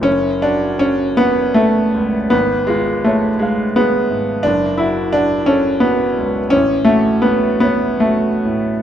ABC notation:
X:1
M:12/8
L:1/8
Q:3/8=55
K:F#m
V:1 name="Grand piano"
F,,, F c f A C,, G,,, ^E c ^e G G,, | F,,, F f A F C,, A,,, F f c F A,, |]
V:2 name="Grand piano"
C D C B, A,2 B, G, A, G, B,2 | D E D C B,2 C A, B, B, A,2 |]